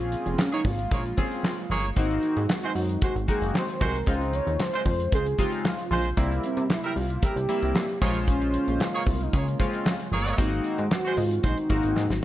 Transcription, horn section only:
0, 0, Header, 1, 2, 480
1, 0, Start_track
1, 0, Tempo, 526316
1, 1791, Time_signature, 4, 2, 24, 8
1, 11167, End_track
2, 0, Start_track
2, 0, Title_t, "Horn section"
2, 0, Program_c, 0, 61
2, 477, Note_on_c, 0, 58, 91
2, 477, Note_on_c, 0, 73, 110
2, 478, Note_on_c, 0, 68, 95
2, 549, Note_off_c, 0, 73, 0
2, 550, Note_off_c, 0, 58, 0
2, 550, Note_off_c, 0, 68, 0
2, 834, Note_on_c, 0, 68, 81
2, 835, Note_on_c, 0, 58, 83
2, 835, Note_on_c, 0, 73, 90
2, 941, Note_off_c, 0, 58, 0
2, 941, Note_off_c, 0, 68, 0
2, 942, Note_off_c, 0, 73, 0
2, 1552, Note_on_c, 0, 68, 109
2, 1553, Note_on_c, 0, 58, 106
2, 1554, Note_on_c, 0, 73, 118
2, 1705, Note_off_c, 0, 58, 0
2, 1705, Note_off_c, 0, 68, 0
2, 1706, Note_off_c, 0, 73, 0
2, 2400, Note_on_c, 0, 56, 97
2, 2400, Note_on_c, 0, 66, 98
2, 2400, Note_on_c, 0, 72, 103
2, 2471, Note_off_c, 0, 56, 0
2, 2471, Note_off_c, 0, 66, 0
2, 2471, Note_off_c, 0, 72, 0
2, 2751, Note_on_c, 0, 56, 80
2, 2752, Note_on_c, 0, 72, 91
2, 2753, Note_on_c, 0, 66, 76
2, 2859, Note_off_c, 0, 56, 0
2, 2860, Note_off_c, 0, 66, 0
2, 2860, Note_off_c, 0, 72, 0
2, 3471, Note_on_c, 0, 56, 108
2, 3473, Note_on_c, 0, 72, 115
2, 3475, Note_on_c, 0, 66, 107
2, 3624, Note_off_c, 0, 56, 0
2, 3626, Note_off_c, 0, 72, 0
2, 3627, Note_off_c, 0, 66, 0
2, 4317, Note_on_c, 0, 65, 92
2, 4317, Note_on_c, 0, 72, 115
2, 4318, Note_on_c, 0, 56, 95
2, 4389, Note_off_c, 0, 65, 0
2, 4389, Note_off_c, 0, 72, 0
2, 4390, Note_off_c, 0, 56, 0
2, 4676, Note_on_c, 0, 56, 83
2, 4676, Note_on_c, 0, 72, 89
2, 4677, Note_on_c, 0, 65, 80
2, 4782, Note_off_c, 0, 56, 0
2, 4782, Note_off_c, 0, 72, 0
2, 4783, Note_off_c, 0, 65, 0
2, 5390, Note_on_c, 0, 65, 107
2, 5391, Note_on_c, 0, 56, 112
2, 5391, Note_on_c, 0, 72, 124
2, 5544, Note_off_c, 0, 56, 0
2, 5544, Note_off_c, 0, 65, 0
2, 5544, Note_off_c, 0, 72, 0
2, 6238, Note_on_c, 0, 55, 101
2, 6239, Note_on_c, 0, 70, 105
2, 6240, Note_on_c, 0, 64, 98
2, 6310, Note_off_c, 0, 55, 0
2, 6311, Note_off_c, 0, 70, 0
2, 6312, Note_off_c, 0, 64, 0
2, 6593, Note_on_c, 0, 70, 89
2, 6595, Note_on_c, 0, 55, 83
2, 6596, Note_on_c, 0, 64, 82
2, 6701, Note_off_c, 0, 70, 0
2, 6702, Note_off_c, 0, 55, 0
2, 6702, Note_off_c, 0, 64, 0
2, 7311, Note_on_c, 0, 58, 107
2, 7311, Note_on_c, 0, 73, 122
2, 7312, Note_on_c, 0, 68, 105
2, 7464, Note_off_c, 0, 58, 0
2, 7464, Note_off_c, 0, 73, 0
2, 7465, Note_off_c, 0, 68, 0
2, 8157, Note_on_c, 0, 58, 103
2, 8158, Note_on_c, 0, 68, 99
2, 8158, Note_on_c, 0, 73, 109
2, 8229, Note_off_c, 0, 58, 0
2, 8230, Note_off_c, 0, 68, 0
2, 8230, Note_off_c, 0, 73, 0
2, 8512, Note_on_c, 0, 58, 82
2, 8513, Note_on_c, 0, 68, 76
2, 8513, Note_on_c, 0, 73, 89
2, 8620, Note_off_c, 0, 58, 0
2, 8620, Note_off_c, 0, 68, 0
2, 8620, Note_off_c, 0, 73, 0
2, 9232, Note_on_c, 0, 68, 110
2, 9233, Note_on_c, 0, 58, 110
2, 9233, Note_on_c, 0, 73, 124
2, 9436, Note_off_c, 0, 68, 0
2, 9436, Note_off_c, 0, 73, 0
2, 9437, Note_off_c, 0, 58, 0
2, 10076, Note_on_c, 0, 56, 99
2, 10076, Note_on_c, 0, 66, 93
2, 10077, Note_on_c, 0, 72, 106
2, 10148, Note_off_c, 0, 56, 0
2, 10149, Note_off_c, 0, 66, 0
2, 10150, Note_off_c, 0, 72, 0
2, 10428, Note_on_c, 0, 56, 80
2, 10428, Note_on_c, 0, 66, 74
2, 10428, Note_on_c, 0, 72, 97
2, 10537, Note_off_c, 0, 56, 0
2, 10538, Note_off_c, 0, 66, 0
2, 10538, Note_off_c, 0, 72, 0
2, 11167, End_track
0, 0, End_of_file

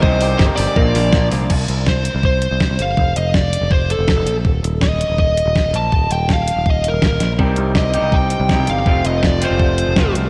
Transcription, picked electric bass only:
0, 0, Header, 1, 2, 480
1, 0, Start_track
1, 0, Tempo, 368098
1, 47, Time_signature, 4, 2, 24, 8
1, 13425, End_track
2, 0, Start_track
2, 0, Title_t, "Picked electric bass"
2, 0, Program_c, 0, 34
2, 38, Note_on_c, 0, 36, 107
2, 449, Note_off_c, 0, 36, 0
2, 514, Note_on_c, 0, 31, 104
2, 621, Note_off_c, 0, 31, 0
2, 758, Note_on_c, 0, 31, 98
2, 863, Note_off_c, 0, 31, 0
2, 991, Note_on_c, 0, 34, 96
2, 1201, Note_off_c, 0, 34, 0
2, 1239, Note_on_c, 0, 34, 104
2, 1464, Note_off_c, 0, 34, 0
2, 1724, Note_on_c, 0, 36, 72
2, 1940, Note_off_c, 0, 36, 0
2, 1953, Note_on_c, 0, 36, 87
2, 2161, Note_off_c, 0, 36, 0
2, 2197, Note_on_c, 0, 36, 86
2, 2710, Note_off_c, 0, 36, 0
2, 2798, Note_on_c, 0, 36, 78
2, 3208, Note_off_c, 0, 36, 0
2, 3276, Note_on_c, 0, 36, 74
2, 3483, Note_off_c, 0, 36, 0
2, 3519, Note_on_c, 0, 36, 88
2, 3623, Note_off_c, 0, 36, 0
2, 3632, Note_on_c, 0, 31, 66
2, 3841, Note_off_c, 0, 31, 0
2, 3877, Note_on_c, 0, 29, 88
2, 4084, Note_off_c, 0, 29, 0
2, 4126, Note_on_c, 0, 29, 85
2, 4635, Note_off_c, 0, 29, 0
2, 4712, Note_on_c, 0, 29, 84
2, 5126, Note_off_c, 0, 29, 0
2, 5198, Note_on_c, 0, 29, 87
2, 5405, Note_off_c, 0, 29, 0
2, 5427, Note_on_c, 0, 29, 94
2, 5537, Note_off_c, 0, 29, 0
2, 5556, Note_on_c, 0, 34, 75
2, 5764, Note_off_c, 0, 34, 0
2, 5800, Note_on_c, 0, 27, 81
2, 6007, Note_off_c, 0, 27, 0
2, 6036, Note_on_c, 0, 27, 86
2, 6550, Note_off_c, 0, 27, 0
2, 6645, Note_on_c, 0, 27, 74
2, 7053, Note_off_c, 0, 27, 0
2, 7115, Note_on_c, 0, 27, 86
2, 7324, Note_off_c, 0, 27, 0
2, 7353, Note_on_c, 0, 27, 89
2, 7460, Note_off_c, 0, 27, 0
2, 7478, Note_on_c, 0, 34, 82
2, 7685, Note_off_c, 0, 34, 0
2, 7716, Note_on_c, 0, 27, 80
2, 7925, Note_off_c, 0, 27, 0
2, 7958, Note_on_c, 0, 27, 93
2, 8471, Note_off_c, 0, 27, 0
2, 8558, Note_on_c, 0, 27, 75
2, 8970, Note_off_c, 0, 27, 0
2, 9021, Note_on_c, 0, 27, 77
2, 9236, Note_off_c, 0, 27, 0
2, 9265, Note_on_c, 0, 27, 92
2, 9376, Note_off_c, 0, 27, 0
2, 9393, Note_on_c, 0, 34, 72
2, 9603, Note_off_c, 0, 34, 0
2, 9637, Note_on_c, 0, 36, 78
2, 9845, Note_off_c, 0, 36, 0
2, 9876, Note_on_c, 0, 36, 89
2, 10390, Note_off_c, 0, 36, 0
2, 10463, Note_on_c, 0, 36, 71
2, 10881, Note_off_c, 0, 36, 0
2, 10951, Note_on_c, 0, 36, 91
2, 11161, Note_off_c, 0, 36, 0
2, 11202, Note_on_c, 0, 36, 94
2, 11306, Note_off_c, 0, 36, 0
2, 11320, Note_on_c, 0, 31, 74
2, 11526, Note_off_c, 0, 31, 0
2, 11550, Note_on_c, 0, 29, 91
2, 11761, Note_off_c, 0, 29, 0
2, 11796, Note_on_c, 0, 29, 94
2, 12310, Note_off_c, 0, 29, 0
2, 12399, Note_on_c, 0, 29, 82
2, 12809, Note_off_c, 0, 29, 0
2, 12872, Note_on_c, 0, 29, 80
2, 13081, Note_off_c, 0, 29, 0
2, 13102, Note_on_c, 0, 29, 93
2, 13209, Note_off_c, 0, 29, 0
2, 13217, Note_on_c, 0, 36, 71
2, 13425, Note_off_c, 0, 36, 0
2, 13425, End_track
0, 0, End_of_file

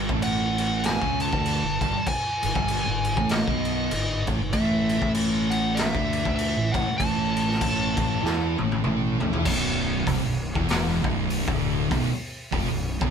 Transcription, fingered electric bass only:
0, 0, Header, 1, 2, 480
1, 0, Start_track
1, 0, Tempo, 614754
1, 1614, Time_signature, 4, 2, 24, 8
1, 10231, End_track
2, 0, Start_track
2, 0, Title_t, "Fingered electric bass"
2, 0, Program_c, 0, 33
2, 73, Note_on_c, 0, 33, 101
2, 762, Note_off_c, 0, 33, 0
2, 792, Note_on_c, 0, 37, 102
2, 1016, Note_off_c, 0, 37, 0
2, 1039, Note_on_c, 0, 38, 103
2, 1260, Note_off_c, 0, 38, 0
2, 1272, Note_on_c, 0, 31, 79
2, 1404, Note_off_c, 0, 31, 0
2, 1415, Note_on_c, 0, 31, 95
2, 1507, Note_off_c, 0, 31, 0
2, 1905, Note_on_c, 0, 31, 80
2, 1990, Note_off_c, 0, 31, 0
2, 1994, Note_on_c, 0, 31, 95
2, 2218, Note_off_c, 0, 31, 0
2, 2243, Note_on_c, 0, 31, 70
2, 2463, Note_off_c, 0, 31, 0
2, 2480, Note_on_c, 0, 33, 106
2, 2702, Note_off_c, 0, 33, 0
2, 2715, Note_on_c, 0, 35, 100
2, 3032, Note_off_c, 0, 35, 0
2, 3061, Note_on_c, 0, 31, 91
2, 3321, Note_off_c, 0, 31, 0
2, 3340, Note_on_c, 0, 33, 101
2, 3432, Note_off_c, 0, 33, 0
2, 3440, Note_on_c, 0, 31, 87
2, 3532, Note_off_c, 0, 31, 0
2, 3538, Note_on_c, 0, 33, 98
2, 3892, Note_off_c, 0, 33, 0
2, 3921, Note_on_c, 0, 33, 100
2, 4610, Note_off_c, 0, 33, 0
2, 4646, Note_on_c, 0, 38, 106
2, 4866, Note_off_c, 0, 38, 0
2, 4882, Note_on_c, 0, 38, 108
2, 5105, Note_off_c, 0, 38, 0
2, 5134, Note_on_c, 0, 33, 80
2, 5258, Note_off_c, 0, 33, 0
2, 5266, Note_on_c, 0, 33, 97
2, 5356, Note_off_c, 0, 33, 0
2, 5466, Note_on_c, 0, 33, 99
2, 5912, Note_off_c, 0, 33, 0
2, 5946, Note_on_c, 0, 33, 103
2, 6205, Note_off_c, 0, 33, 0
2, 6227, Note_on_c, 0, 33, 94
2, 6409, Note_off_c, 0, 33, 0
2, 6432, Note_on_c, 0, 40, 87
2, 6688, Note_off_c, 0, 40, 0
2, 6719, Note_on_c, 0, 33, 91
2, 6896, Note_off_c, 0, 33, 0
2, 6913, Note_on_c, 0, 33, 97
2, 7168, Note_off_c, 0, 33, 0
2, 7192, Note_on_c, 0, 33, 92
2, 7279, Note_off_c, 0, 33, 0
2, 7300, Note_on_c, 0, 40, 92
2, 7384, Note_off_c, 0, 40, 0
2, 7388, Note_on_c, 0, 23, 104
2, 7832, Note_off_c, 0, 23, 0
2, 7861, Note_on_c, 0, 24, 106
2, 7991, Note_off_c, 0, 24, 0
2, 8010, Note_on_c, 0, 23, 82
2, 8228, Note_off_c, 0, 23, 0
2, 8245, Note_on_c, 0, 28, 109
2, 8595, Note_off_c, 0, 28, 0
2, 8624, Note_on_c, 0, 23, 105
2, 8936, Note_off_c, 0, 23, 0
2, 8964, Note_on_c, 0, 26, 99
2, 9276, Note_off_c, 0, 26, 0
2, 9303, Note_on_c, 0, 23, 105
2, 9430, Note_off_c, 0, 23, 0
2, 9786, Note_on_c, 0, 29, 103
2, 9910, Note_off_c, 0, 29, 0
2, 9926, Note_on_c, 0, 23, 74
2, 10143, Note_off_c, 0, 23, 0
2, 10164, Note_on_c, 0, 23, 110
2, 10231, Note_off_c, 0, 23, 0
2, 10231, End_track
0, 0, End_of_file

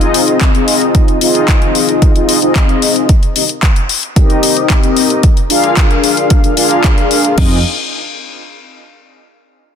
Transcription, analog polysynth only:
0, 0, Header, 1, 2, 480
1, 0, Start_track
1, 0, Key_signature, -4, "minor"
1, 0, Tempo, 535714
1, 849, Time_signature, 4, 2, 24, 8
1, 8738, End_track
2, 0, Start_track
2, 0, Title_t, "Analog polysynth"
2, 0, Program_c, 0, 90
2, 0, Note_on_c, 0, 60, 84
2, 0, Note_on_c, 0, 63, 77
2, 0, Note_on_c, 0, 65, 75
2, 0, Note_on_c, 0, 68, 78
2, 0, Note_on_c, 0, 75, 92
2, 457, Note_off_c, 0, 60, 0
2, 460, Note_off_c, 0, 63, 0
2, 462, Note_off_c, 0, 65, 0
2, 464, Note_off_c, 0, 68, 0
2, 466, Note_off_c, 0, 75, 0
2, 484, Note_on_c, 0, 60, 76
2, 489, Note_on_c, 0, 63, 69
2, 493, Note_on_c, 0, 65, 67
2, 497, Note_on_c, 0, 68, 71
2, 502, Note_on_c, 0, 75, 84
2, 1058, Note_off_c, 0, 60, 0
2, 1060, Note_off_c, 0, 63, 0
2, 1062, Note_off_c, 0, 65, 0
2, 1064, Note_off_c, 0, 68, 0
2, 1066, Note_off_c, 0, 75, 0
2, 1084, Note_on_c, 0, 60, 87
2, 1088, Note_on_c, 0, 63, 81
2, 1092, Note_on_c, 0, 65, 84
2, 1097, Note_on_c, 0, 68, 79
2, 1101, Note_on_c, 0, 75, 91
2, 1899, Note_off_c, 0, 60, 0
2, 1901, Note_off_c, 0, 63, 0
2, 1903, Note_off_c, 0, 65, 0
2, 1906, Note_off_c, 0, 68, 0
2, 1908, Note_off_c, 0, 75, 0
2, 1927, Note_on_c, 0, 60, 76
2, 1930, Note_on_c, 0, 63, 65
2, 1933, Note_on_c, 0, 65, 70
2, 1934, Note_on_c, 0, 68, 65
2, 1936, Note_on_c, 0, 75, 82
2, 2140, Note_off_c, 0, 60, 0
2, 2141, Note_off_c, 0, 63, 0
2, 2143, Note_off_c, 0, 65, 0
2, 2143, Note_off_c, 0, 68, 0
2, 2144, Note_off_c, 0, 75, 0
2, 2164, Note_on_c, 0, 60, 81
2, 2169, Note_on_c, 0, 63, 75
2, 2173, Note_on_c, 0, 65, 75
2, 2178, Note_on_c, 0, 68, 76
2, 2182, Note_on_c, 0, 75, 91
2, 2752, Note_off_c, 0, 60, 0
2, 2754, Note_off_c, 0, 63, 0
2, 2756, Note_off_c, 0, 65, 0
2, 2759, Note_off_c, 0, 68, 0
2, 2761, Note_off_c, 0, 75, 0
2, 3007, Note_on_c, 0, 60, 73
2, 3009, Note_on_c, 0, 63, 67
2, 3012, Note_on_c, 0, 67, 67
2, 3014, Note_on_c, 0, 70, 70
2, 3016, Note_on_c, 0, 75, 82
2, 3077, Note_off_c, 0, 60, 0
2, 3078, Note_off_c, 0, 63, 0
2, 3079, Note_off_c, 0, 67, 0
2, 3081, Note_off_c, 0, 70, 0
2, 3082, Note_off_c, 0, 75, 0
2, 3721, Note_on_c, 0, 60, 84
2, 3726, Note_on_c, 0, 63, 82
2, 3729, Note_on_c, 0, 67, 79
2, 3734, Note_on_c, 0, 70, 76
2, 3739, Note_on_c, 0, 75, 90
2, 4298, Note_off_c, 0, 60, 0
2, 4300, Note_off_c, 0, 63, 0
2, 4302, Note_off_c, 0, 67, 0
2, 4304, Note_off_c, 0, 70, 0
2, 4306, Note_off_c, 0, 75, 0
2, 4327, Note_on_c, 0, 60, 77
2, 4330, Note_on_c, 0, 63, 67
2, 4331, Note_on_c, 0, 67, 68
2, 4334, Note_on_c, 0, 70, 69
2, 4335, Note_on_c, 0, 75, 84
2, 4673, Note_off_c, 0, 60, 0
2, 4675, Note_off_c, 0, 63, 0
2, 4675, Note_off_c, 0, 67, 0
2, 4677, Note_off_c, 0, 70, 0
2, 4677, Note_off_c, 0, 75, 0
2, 4920, Note_on_c, 0, 62, 88
2, 4925, Note_on_c, 0, 65, 80
2, 4930, Note_on_c, 0, 68, 80
2, 4934, Note_on_c, 0, 70, 76
2, 4940, Note_on_c, 0, 77, 101
2, 5737, Note_off_c, 0, 62, 0
2, 5740, Note_off_c, 0, 65, 0
2, 5742, Note_off_c, 0, 68, 0
2, 5744, Note_off_c, 0, 70, 0
2, 5747, Note_off_c, 0, 77, 0
2, 5767, Note_on_c, 0, 62, 76
2, 5769, Note_on_c, 0, 65, 69
2, 5771, Note_on_c, 0, 68, 68
2, 5774, Note_on_c, 0, 70, 71
2, 5776, Note_on_c, 0, 77, 84
2, 5864, Note_off_c, 0, 62, 0
2, 5864, Note_off_c, 0, 65, 0
2, 5866, Note_off_c, 0, 68, 0
2, 5867, Note_off_c, 0, 70, 0
2, 5868, Note_off_c, 0, 77, 0
2, 5880, Note_on_c, 0, 62, 99
2, 5884, Note_on_c, 0, 65, 83
2, 5888, Note_on_c, 0, 68, 91
2, 5894, Note_on_c, 0, 70, 83
2, 5897, Note_on_c, 0, 77, 102
2, 6590, Note_off_c, 0, 62, 0
2, 6593, Note_off_c, 0, 65, 0
2, 6594, Note_off_c, 0, 68, 0
2, 6597, Note_off_c, 0, 70, 0
2, 6599, Note_off_c, 0, 77, 0
2, 6599, Note_on_c, 0, 60, 81
2, 6605, Note_on_c, 0, 63, 75
2, 6611, Note_on_c, 0, 65, 77
2, 6620, Note_on_c, 0, 68, 75
2, 6625, Note_on_c, 0, 75, 97
2, 6783, Note_off_c, 0, 60, 0
2, 6786, Note_off_c, 0, 63, 0
2, 6789, Note_off_c, 0, 65, 0
2, 6794, Note_off_c, 0, 68, 0
2, 6797, Note_off_c, 0, 75, 0
2, 8738, End_track
0, 0, End_of_file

